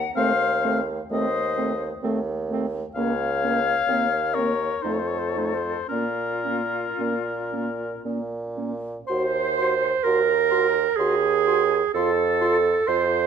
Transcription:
Already playing: F#5
0.15 D#2 A3 C4 C5 F5
0.64 A3 C4
1.11 D#2 A3 C4 C5 D#5
1.57 A3 C4
2.02 D#2 A3 C4
2.50 A3 C4
2.95 C#2 A#3 C#4 C#5 F5
3.43 A#3 C#4
3.88 D#2 A#3 C4
4.34 C4 A#4 C#5
4.38 A#3
4.82 F2 A3 D#4 A4 C5
4.94 C#5
4.99 C5
5.08 C#5
5.19 C5
5.29 C#5
5.36 A3 D#4 C5
5.45 C#5
5.54 C5
5.88 A#2 A#3 C#4 F4 A#4
6.43 A#3 C#4
6.98 A#2 A#3 C#4
7.53 A#3 C#4
8.04 A#2 A#3 C#4
8.57 A#3 C#4
9.07 D#2 F#4 C5 C6
9.58 F#4 C6
10.03 D#2 F#4 A#4 C6
10.51 F#4 C6
10.96 D#2 F#4 G#4 C6
11.47 F#4 C6
11.94 F2 F4 A4 C6
12.41 F4 C6
12.87 F2 F4 C5 C6

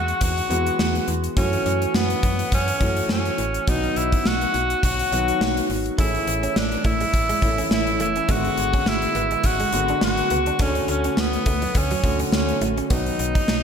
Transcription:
Already playing: E2 E3 G#3 B3 F#4
0.08 closed hi-hat
0.21 E2 F#4, kick, closed hi-hat
0.37 closed hi-hat
0.49 E2 E3 G#3 B3 F#4, closed hi-hat
0.67 closed hi-hat
0.79 E2, snare
0.95 closed hi-hat
1.08 E2, closed hi-hat
1.24 closed hi-hat
1.36 F#2 E3 A3 C#4 F#4, kick, closed hi-hat
1.53 closed hi-hat
1.66 F#2, closed hi-hat
1.82 closed hi-hat
1.94 F#2 B3, snare
2.10 closed hi-hat
2.23 F#2, kick, closed hi-hat
2.39 closed hi-hat
2.52 F#2 C#4, kick, closed hi-hat
2.68 closed hi-hat
2.80 F#2 E3 A3 C#4 F#4, kick, closed hi-hat
2.96 closed hi-hat
3.09 F#2 C#4, snare
3.25 closed hi-hat
3.38 A1, closed hi-hat
3.54 closed hi-hat
3.67 B1 D#3 F#3 B3 D#4 F#4, kick, closed hi-hat
3.83 closed hi-hat
3.96 B1 E4, closed hi-hat
4.12 kick, closed hi-hat
4.25 B1 F#4, snare
4.41 closed hi-hat
4.54 B1, closed hi-hat
4.70 closed hi-hat
4.83 B1 F#4, kick, closed hi-hat
4.99 closed hi-hat
5.12 B1 D#3 F#3 B3 F#4, closed hi-hat
5.28 closed hi-hat
5.41 B1, snare
5.57 closed hi-hat
5.70 G#1, open hi-hat
5.86 closed hi-hat
5.98 A1 E3 A3 C#4 E4 G#4, kick, closed hi-hat
6.14 closed hi-hat
6.27 A1, muted clean electric guitar stroke, closed hi-hat
6.43 C#4, closed hi-hat
6.56 A1 D4, muted clean electric guitar stroke, snare
6.72 closed hi-hat
6.84 A1 A3 E4, kick, closed hi-hat
7.00 G#3, closed hi-hat
7.13 A1, kick, closed hi-hat
7.29 G#3, closed hi-hat
7.42 A1 E3 A3 C#4 E4, muted clean electric guitar stroke, kick, closed hi-hat
7.58 C#4, closed hi-hat
7.71 A1 E4, muted clean electric guitar stroke, snare
7.87 closed hi-hat
8.00 F#1 A3 E4, closed hi-hat
8.16 C#4, closed hi-hat
8.29 G#1 D3 G#3 B3 F#4, kick, closed hi-hat
8.45 closed hi-hat
8.57 G#1, muted clean electric guitar stroke, closed hi-hat
8.73 C#4, kick, closed hi-hat
8.86 G#1 E4, muted clean electric guitar stroke, snare
9.02 closed hi-hat
9.15 G#1 B3, closed hi-hat
9.31 G#3, closed hi-hat
9.44 G#1 F#4, kick, closed hi-hat
9.60 G#3, closed hi-hat
9.72 G#1 D3 G#3 B3 F#4, muted clean electric guitar stroke, closed hi-hat
9.88 D4, closed hi-hat
10.01 G#1 F#4, muted clean electric guitar stroke, snare
10.17 closed hi-hat
10.30 C#2 B3, closed hi-hat
10.46 D4, closed hi-hat
10.59 D2 D3 A3 C#4 D4 F#4, kick, closed hi-hat
10.75 closed hi-hat
10.88 D2 C#4, muted clean electric guitar stroke, closed hi-hat
11.04 C#4, closed hi-hat
11.17 D2 B3, muted clean electric guitar stroke, snare
11.33 closed hi-hat
11.46 D2 A3, kick, closed hi-hat
11.62 F#3, closed hi-hat
11.75 D2 C#4, kick, closed hi-hat
11.91 F#3, closed hi-hat
12.03 D2 D3 A3 C#4 F#4, muted clean electric guitar stroke, kick, closed hi-hat
12.19 C#4, closed hi-hat
12.32 D2 C#4, muted clean electric guitar stroke, snare
12.49 closed hi-hat
12.61 A1 A3, closed hi-hat
12.77 C#4, closed hi-hat
12.90 B1 D#3 F#3 B3 D#4 F#4, kick, closed hi-hat
13.06 closed hi-hat
13.19 B1, muted clean electric guitar stroke, closed hi-hat
13.35 D#4, kick, closed hi-hat
13.48 B1, muted clean electric guitar stroke, snare

